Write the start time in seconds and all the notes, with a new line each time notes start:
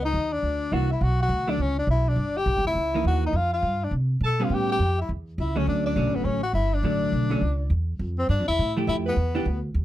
Already playing: C#2
0.02 D#4 D#5
0.14 D#2
0.32 D4 D5
0.42 D2
0.72 C2 E3 A#3 D4 F#4 F#5
0.90 E4 E5
1.01 B1 F#4 F#5
1.20 F#4 F#5
1.29 D2
1.47 F#3 A3 D4 D5
1.58 C#2 C#4
1.63 C#5
1.78 D4 D5
1.87 B1 E4 E5
2.08 D4 D5
2.16 G1
2.37 G4 G5
2.46 A#1
2.56 G1
2.65 F1 E4 E5
2.75 C#2
2.94 E3 A#3 D#4
3.04 D#2 F#4 F#5
3.26 D#4 D#5
3.33 F2 F4 F5
3.53 F4 F5
3.62 G2
3.83 D4 D5
3.91 C3
4.21 B2 A5
4.26 A4
4.40 G3 B3 C#4 F5
4.44 F4
4.50 A2 G5
4.54 G4
4.69 G4 G5
4.79 F2
4.98 E4 E5
5.09 E2
5.38 C#2 E4 E5
5.56 D3 F#3 A3 C#4 C#5
5.67 D2 D4 D5
5.86 D4 D5
5.95 B1 D3 F#3 A3 C#4
6.06 A1
6.15 F#1 B3 B4
6.24 A1 C#4 C#5
6.43 F#4 F#5
6.53 G1 E4 E5
6.74 D4 D5
6.83 A1 D3 F#3 A3
7.12 B1
7.30 D3 F#3 A3 C#4
7.41 C#2
7.70 E2
7.99 F2
8.18 C4 C5
8.29 G2 D4 D5
8.39 F2
8.48 E2 E4 E5
8.59 A2
8.77 F3 A3 E4 G4
8.87 F2 E4 E5
9.06 B3 B4
9.16 E2
9.35 E3 B3 D4 G4
9.45 D2
9.74 D#2